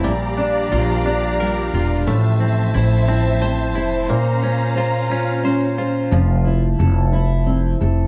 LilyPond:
<<
  \new Staff \with { instrumentName = "String section" } { \time 6/8 \key f \major \tempo 4. = 59 << { <g' f'' bes''>2. | <f e'' a''>2. | <des' f'' bes''>2. | r2. | } \\ { d''2. | c''2.~ | c''2. | r2. | } >> }
  \new Staff \with { instrumentName = "Steel-string acoustic guitar" } { \time 6/8 \key f \major bes,8 d'8 f'8 d'8 g8 f'8 | a,8 e'8 c''8 e'8 c'8 c''8 | bes,8 f'8 c''8 f'8 des'8 c''8 | f8 e'8 a'8 e'8 c'8 a'8 | }
  \new Staff \with { instrumentName = "Clean electric guitar" } { \time 6/8 \key f \major g8 d'8 f'8 d'8 bes'8 f'8 | a8 c'8 e'8 c'8 c''8 e'8 | bes8 des'8 f'8 des'8 c''8 f'8 | r2. | }
  \new Staff \with { instrumentName = "Upright bass" } { \clef bass \time 6/8 \key f \major bes,,4 bes,,4. e,,8 | a,,4 a,,4. f,,8 | r2. | f,,4 f,,4. f,,8 | }
>>